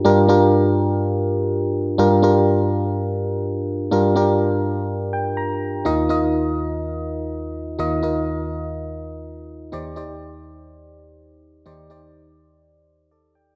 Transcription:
<<
  \new Staff \with { instrumentName = "FM electric piano" } { \time 4/4 \key g \minor \tempo 4 = 124 <d' f' g' bes'>8 <d' f' g' bes'>2 r4. | <d' f' g' bes'>8 <d' f' g' bes'>2 r4. | <d' f' g' bes'>8 <d' f' g' bes'>2 g''8 bes''4 | <ees' f' bes' ees''>8 <ees' f' bes' ees''>2 r4. |
<ees' f' bes' ees''>8 <ees' f' bes' ees''>2 r4. | <ees' g' c'' d''>8 <ees' g' c'' d''>2 r4. | <ees' g' c'' d''>8 <ees' g' c'' d''>2 r8 <a' d''>8 <d'' g''>8 | }
  \new Staff \with { instrumentName = "FM electric piano" } { \clef bass \time 4/4 \key g \minor g,1 | g,1 | g,1 | <ees, ees>1 |
<ees, ees>1 | <ees, ees>1 | <ees, ees>1 | }
>>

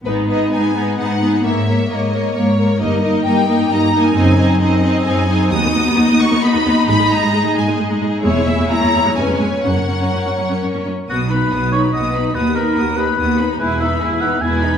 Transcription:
<<
  \new Staff \with { instrumentName = "Violin section" } { \time 3/4 \key gis \minor \tempo 4 = 132 b'8 dis''8 gis''4 fis''4 | e''4 dis''4 cis''4 | dis''4 g''4 \tuplet 3/2 { ais''4 gis''8~ } | gis''4 dis''4 gis''4 |
\key b \major dis'''4. cis'''8 b''4 | b''8 ais''4 gis''8 r4 | cis''8 e''8 ais''4 gis''4 | fis''2 r4 |
dis'''8 b''8 dis'''8 b''8 dis'''8 b''8 | dis'''8 b''8 dis'''8 b''8 dis'''8 b''8 | gis''8 b''8 gis''8 b''8 gis''8 b''8 | }
  \new Staff \with { instrumentName = "Oboe" } { \time 3/4 \key gis \minor r2. | r2. | r2. | r2. |
\key b \major r2. | r2. | r2. | r2. |
fis'8 b'4 cis''8 dis''4 | b'8 ais'4 b'4 r8 | b'8 e''4 fis''8 gis''4 | }
  \new Staff \with { instrumentName = "Violin section" } { \time 3/4 \key gis \minor << { b'8 b'8 b'8 b'8 b'8 b'8 | cis''8 cis''8 cis''8 cis''8 cis''8 cis''8 | dis''8 dis''8 dis''8 dis''8 dis''8 dis''8 | dis''8 dis''8 dis''8 dis''8 dis''8 dis''8 |
\key b \major dis''2.~ | dis''2. | cis''2.~ | cis''2~ cis''8 r8 |
fis'8 b'8 fis'8 b'8 fis'8 b'8 | fis'8 b'8 fis'8 b'8 fis'8 b'8 | gis'8 b'8 gis'8 b'8 gis'8 b'8 | } \\ { gis'8 gis'8 gis'8 gis'8 gis'8 gis'8 | ais'8 ais'8 ais'8 ais'8 ais'8 ais'8 | ais'8 ais'8 ais'8 ais'8 ais'8 ais'8 | gis'8 gis'8 gis'8 gis'8 gis'8 gis'8 |
fis'2. | gis'2.~ | gis'2 b'4 | ais'2~ ais'8 r8 |
r2. | r2. | r2. | } >> }
  \new Staff \with { instrumentName = "Viola section" } { \time 3/4 \key gis \minor << { dis'8 dis'8 dis'8 dis'8 dis'8 dis'8 | ais8 ais8 ais8 ais8 ais8 ais8 | dis'8 dis'8 dis'8 dis'8 dis'8 dis'8 | dis'8 dis'8 dis'8 dis'8 dis'8 dis'8 |
\key b \major dis'2.~ | dis'2. | e'2 cis'4~ | cis'2~ cis'8 r8 |
r2. | r2. | r2. | } \\ { b8 b8 b8 b8 b8 b8 | ais8 ais8 ais8 ais8 ais8 ais8 | ais8 ais8 ais8 ais8 ais8 ais8 | bis8 bis8 bis8 bis8 bis8 bis8 |
b16 b16 b16 b16 b16 b16 b16 b16 b16 b16 b16 r16 | gis16 gis16 gis16 gis16 gis16 gis16 gis16 gis16 gis16 gis16 gis16 r16 | gis16 gis16 gis16 gis16 gis16 gis16 gis16 gis16 gis16 gis16 gis16 r16 | cis'16 cis'16 cis'16 cis'16 cis'16 cis'16 cis'16 cis'16 cis'16 cis'16 cis'16 r16 |
b8 dis'8 b8 dis'8 b8 dis'8 | b8 dis'8 b8 dis'8 b8 dis'8 | e'8 dis'8 e'8 dis'8 e'8 dis'8 | } >> }
  \new Staff \with { instrumentName = "Cello section" } { \clef bass \time 3/4 \key gis \minor gis,4 gis,4 gis,4 | gis,4 gis,4 gis,4 | g,4 g,4 g,4 | fis,4 fis,4 fis,4 |
\key b \major dis,16 dis,16 dis,16 dis,16 dis,16 dis,16 dis,16 dis,16 dis,16 dis,16 dis,16 r16 | gis,16 gis,16 gis,16 gis,16 gis,16 gis,16 gis,16 gis,16 gis,16 gis,16 gis,16 r16 | e,16 e,16 e,16 e,16 e,16 e,16 e,16 e,16 eis,16 eis,16 eis,16 r16 | fis,16 fis,16 fis,16 fis,16 fis,16 fis,16 fis,16 fis,16 fis,16 fis,16 fis,16 r16 |
b,4 b,4 b,4 | dis,4 dis,4 dis,4 | e,4 e,4 e,4 | }
  \new Staff \with { instrumentName = "Double bass section" } { \clef bass \time 3/4 \key gis \minor gis,,4 r2 | gis,,4 r2 | g,,4 r2 | fis,,4 r2 |
\key b \major dis,16 r2 r8. | gis,,16 r2 r8. | e,,16 r4. r16 eis,,16 r8. | fis,,16 r2 r8. |
b,,4 b,,4 b,,4 | dis,4 dis,4 dis,4 | e,,4 e,,4 e,,4 | }
>>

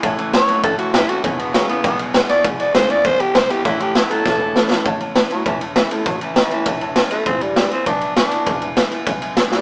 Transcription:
<<
  \new Staff \with { instrumentName = "Upright piano" } { \time 4/4 \key a \major \tempo 4 = 199 <cis'' e'' a''>8 <cis'' e'' a''>8 <cis'' e'' a''>8 <cis'' e'' a''>8 <cis'' e'' a''>8 <cis'' e'' a''>8 <cis'' e'' a''>8 <cis'' e'' a''>8 | <b' e'' gis''>8 <e'' gis''>8 <b' e'' gis''>8 <b' e'' gis''>8 <b' e'' gis''>8 <b' e'' gis''>8 <b' e'' gis''>8 <b' gis''>8 | <b' e'' gis''>8 <b' e''>8 <b' e'' gis''>8 <b' gis''>8 <b' e'' gis''>8 <b' e'' gis''>8 <b' e'' fis''>8 <b' e'' gis''>8 | <cis'' e'' a''>8 <cis'' e'' a''>8 <cis'' e'' a''>8 <cis'' e'' a''>8 <cis'' e'' a''>8 <cis'' e'' a''>8 <cis'' e'' a''>8 <cis'' e'' a''>8 |
<cis'' e'' a''>8 <cis'' e'' a''>8 <cis'' e'' a''>8 <cis'' e'' a''>8 <cis'' e'' a''>8 <cis'' e'' a''>8 <cis'' e'' fis''>8 <cis'' e'' a''>8 | <cis'' e'' a''>8 <cis'' e'' a''>8 <cis'' e'' a''>8 <cis'' e'' a''>8 <cis'' e'' a''>8 <cis'' e'' a''>8 <cis'' e'' a''>8 <cis'' e'' a''>8 | <b' e'' gis''>8 <b' gis''>8 <b' gis''>8 <b' e'' gis''>8 <b' e'' gis''>8 <b' e'' gis''>8 <b' e'' gis''>8 <b' gis''>8 | <b' e'' gis''>8 <b' e'' gis''>8 <b' e'' gis''>8 <b' e'' gis''>8 <b' e'' gis''>8 <b' e'' gis''>8 <b' gis''>8 <b' e'' gis''>8 | }
  \new Staff \with { instrumentName = "Tenor saxophone" } { \time 4/4 \key a \major gis'8 r8 cis''4 a'8 fis'8 e'8 fis'8 | cis'8 b8 fis8 b8 b8 r4 d''8 | r8 d''8 c''8 d''8 c''8 g'8 c''8 g'8 | e'8 g'8 e'8 a'2 r8 |
r4. fis8 e8 r8 e8 a8 | fis8 e8 e2 r8 a8 | c'8 g4 c'8 d'4 d'4~ | d'4 r2 r8 g8 | }
  \new Staff \with { instrumentName = "Steel-string acoustic guitar" } { \time 4/4 \key a \major << { r4 <e a cis' e'>8 <cis' e'>8 r4 <e a cis' e'>8 <cis' e'>8 | r4 <d gis b e'>8 <b e'>8 r4 <d gis b e'>8 <b e'>8 | r4 <d gis b e'>8 <b e'>8 r4 <d gis b e'>8 <b e'>8 | r4 <e a cis' e'>8 <cis' e'>8 r4 <e a cis' e'>8 <cis' e'>8 |
r4 <e a cis' e'>8 <cis' e'>8 r4 <e a cis' e'>8 <cis' e'>8 | r4 <e a cis' e'>8 <cis' e'>8 r4 <e a cis' e'>8 <cis' e'>8 | r4 <d gis b e'>8 <b e'>8 r4 <d gis b e'>8 <b e'>8 | r4 <d gis b e'>8 <b e'>8 r4 <d gis b e'>8 <b e'>8 | } \\ { a,2 e,2 | e,2 b,2 | e,2 b,2 | a,2 e,2 |
a,2 e,2 | a,2 r2 | e,2 b,2 | e,2 b,2 | } >> }
  \new Staff \with { instrumentName = "Clean electric guitar" } { \clef bass \time 4/4 \key a \major <a, e>8 <a, e>8 <a, fis>8 <a, fis>8 <a, e>8 <a, e>8 <a, e>8 <a, e>8 | <e, b,>8 <e, b,>8 <e, cis>8 <e, cis>8 <e, b,>8 <e, b,>8 <e, b,>8 <e, b,>8 | <e, b,>8 <e, b,>8 <e, cis>8 <e, cis>8 <e, b,>8 <e, b,>8 <e, b,>8 <e, b,>8 | <a, e>8 <a, e>8 <a, fis>8 <a, fis>8 <a, e>8 <a, e>8 <a, e>8 <a, e>8 |
r1 | r1 | r1 | r1 | }
  \new Staff \with { instrumentName = "Upright bass" } { \clef bass \time 4/4 \key a \major a,,4. r8 gis,,8 r8 fis,,8 r8 | e,,4. r8 b,,4. r8 | e,,8 r8 d,8 r8 cis,8 r8 b,,8 r8 | a,,4. r8 e,,4. r8 |
a,,4. r8 e,,4. r8 | a,,4. r8 e,,4. r8 | e,,4. r8 b,,4. r8 | e,,4. r8 b,,4. r8 | }
  \new DrumStaff \with { instrumentName = "Drums" } \drummode { \time 4/4 <bd cymr>8 cymr8 <cymr sn>8 cymr8 <bd cymr>8 cymr8 <cymr sn>8 cymr8 | <bd cymr>8 cymr8 <cymr sn>8 cymr8 <bd cymr>8 cymr8 <cymr sn>8 cymr8 | <bd cymr>8 cymr8 <cymr sn>8 cymr8 <bd cymr>8 cymr8 <cymr sn>8 cymr8 | <bd cymr>8 cymr8 <cymr sn>8 cymr8 <bd sn>4 sn8 sn8 |
<bd cymr>8 cymr8 <cymr sn>8 cymr8 <bd cymr>8 cymr8 <cymr sn>8 cymr8 | <bd cymr>8 cymr8 <cymr sn>8 cymr8 <bd cymr>8 cymr8 <cymr sn>8 cymr8 | <bd cymr>8 cymr8 <cymr sn>8 cymr8 <bd cymr>8 cymr8 <cymr sn>8 cymr8 | <bd cymr>8 cymr8 <cymr sn>8 cymr8 <bd cymr>8 cymr8 <cymr sn>8 sn8 | }
>>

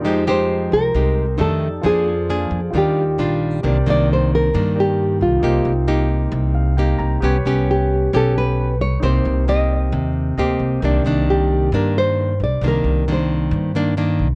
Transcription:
<<
  \new Staff \with { instrumentName = "Grand piano" } { \time 4/4 \key ees \major \tempo 4 = 134 << { r1 | r1 | \key c \minor r1 | r2 r8 f''8 g''8 bes''8 |
r1 | r2. ees''4 | r1 | r1 | } \\ { <ees' g' c''>2. <ees' g' a' d''>4 | <f' aes' c'' d''>2 <f' g' bes' d''>2 | <g' bes' d''>2~ <g' bes' d''>8 <g' bes' d''>4. | <ees' g' bes' c''>1 |
<g' b' cis''>1 | <ees' g' bes' c''>1 | <g' bes' d''>1~ | <g' bes' d''>1 | } >> }
  \new Staff \with { instrumentName = "Nylon-string guitar" } { \time 4/4 \key ees \major r8 c''4 bes'4. a'4 | aes'2 g'4. r8 | \key c \minor r8 d''8 c''8 bes'4 g'4 f'8~ | f'4. r2 r8 |
r4 g'4 a'8 b'4 cis''8 | c''4 ees''4. r4. | r4 g'4 bes'8 c''4 d''8 | bes'4 c''4. r4. | }
  \new Staff \with { instrumentName = "Nylon-string guitar" } { \time 4/4 \key ees \major << { <aes ees' g'>8 <aes ees' g'>4. <aes ees' g'>8 r8 <ees a d'>8 r8 | <bes d' aes'>8 r8 <bes d' aes'>8 r8 <g d' f'>8 r8 <g d' f'>4 | \key c \minor <ees bes d'>8 <ees bes d'>4. <ees bes d'>2 | <bes ees' g'>8 r8 <bes ees' g'>2 <bes ees' g'>4 |
<b cis' g'>8 <b cis' g'>4. <b cis' g'>4. r8 | <bes c' g'>4 <bes c' g'>2 <bes c' g'>4 | <ees bes d'>8 <ees bes d'>4. <ees bes d'>4. r8 | <ees bes d'>4 <ees bes d'>4. <ees bes d'>8 <ees bes d'>8 r8 | } \\ { f2 c4 r4 | f2 ees2 | c2 g,2 | c2 c2 |
r1 | c2 c2 | c2 g,2 | c2 g,2 | } >> }
  \new Staff \with { instrumentName = "Upright bass" } { \clef bass \time 4/4 \key ees \major f,4. c,8 c,4 f,4 | f,4. f,8 ees,4 bes,,4 | \key c \minor c,8 c,4. g,4. c,8 | c,8 c,4. c,4. c,8 |
c,8 c,4. b,,4. c,8 | c,8 c,4. ees,4 d,8 c,8 | c,8 c,4. g,4. c,8 | c,8 c,4. g,4. c,8 | }
>>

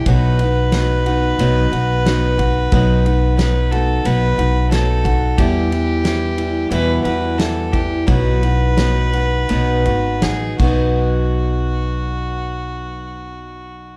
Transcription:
<<
  \new Staff \with { instrumentName = "Fiddle" } { \time 4/4 \key b \mixolydian \tempo 4 = 89 b'1~ | b'4 b'8 a'8 b'4 a'4 | g'2 b'8 b'8 a'8 g'8 | b'2. gis'8 fis'8~ |
fis'1 | }
  \new Staff \with { instrumentName = "Steel-string acoustic guitar" } { \time 4/4 \key b \mixolydian <b, fis b dis' fis'>8 <b dis' fis'>8 <fis b dis' fis'>8 <b dis' fis'>8 <b, fis b dis' fis'>8 <b dis' fis'>8 <fis b dis' fis'>8 <b dis' fis'>8 | <b, fis b dis' fis'>8 <b dis' fis'>8 <fis b dis' fis'>8 <b dis' fis'>8 <b, fis b dis' fis'>8 <b dis' fis'>8 <fis b dis' fis'>8 <b dis' fis'>8 | <e, b, e g e'>8 <e g e'>8 <e g e'>8 <e g e'>8 <e, b, e g e' fis'>8 <e g e' fis'>8 <e g e' fis'>8 <e g e'>8 | <b, fis b dis' fis'>8 <b dis' fis'>8 <fis b dis' fis'>8 <b dis' fis'>8 <b, fis b dis' fis'>8 <b dis' fis'>8 <fis b dis' fis'>8 <b, fis b dis' fis'>8~ |
<b, fis b dis' fis'>1 | }
  \new Staff \with { instrumentName = "Upright bass" } { \clef bass \time 4/4 \key b \mixolydian b,,2 b,,8 b,,4. | b,,2 b,,8 b,,4. | e,2 e,8 e,4. | b,,2 b,,8 gis,,8 a,,8 b,,8~ |
b,,1 | }
  \new DrumStaff \with { instrumentName = "Drums" } \drummode { \time 4/4 <bd cymr>8 cymr8 <cymr sn>8 cymr8 cymr8 cymr8 <cymr sn>8 <bd cymr>8 | <bd cymr>8 cymr8 <cymr sn>8 cymr8 cymr8 cymr8 <cymr sn>8 <bd cymr>8 | <bd cymr>8 cymr8 <cymr sn>8 cymr8 cymr8 cymr8 <cymr sn>8 <bd cymr>8 | <bd cymr>8 cymr8 <cymr sn>8 cymr8 cymr8 cymr8 <cymr sn>8 <cymc bd>8 |
r4 r4 r4 r4 | }
>>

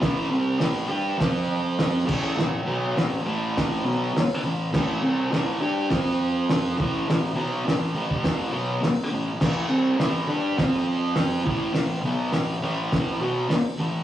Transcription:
<<
  \new Staff \with { instrumentName = "Distorted electric guitar" } { \clef bass \time 4/4 \key a \minor \tempo 4 = 102 <a, e a>8 <c g c'>8 <a, e a>8 <g d' g'>8 <f c' f'>4. <a, e a>8 | <a, e>8 <b, fis b>8 <a, e>8 <a, e a>4 <b, fis b>8 r8 <a, e>8 | <a, e a>8 <c g c'>8 <a, e a>8 <g d' g'>8 <f c' f'>4. <a, e a>8 | <a, e>8 <b, fis b>8 <a, e>8 <a, e a>4 <b, fis b>8 r8 <a, e>8 |
<a, e a>8 <c g c'>8 <a, e a>8 <g d' g'>8 <f c' f'>4. <a, e a>8 | <a, e>8 <b, fis b>8 <a, e>8 <a, e a>4 <b, fis b>8 r8 <a, e>8 | }
  \new DrumStaff \with { instrumentName = "Drums" } \drummode { \time 4/4 <hho bd sn>4 <hho sn>4 <hho bd sn>4 <hho sn>8 <cymc bd>8 | sn4 <hho sn>4 <hho bd sn>4 <hho sn>4 | <cymc bd sn>4 <hho sn>4 <hho bd sn>4 <hho sn>8 bd8 | <hho sn>4 <hho sn>8. bd16 <hho bd sn>4 <hho sn>4 |
<cymc bd sn>4 <hho sn>4 <hho bd sn>4 <hho sn>8 bd8 | <hho sn>4 <hho sn>4 <hho bd sn>4 <hho sn>4 | }
>>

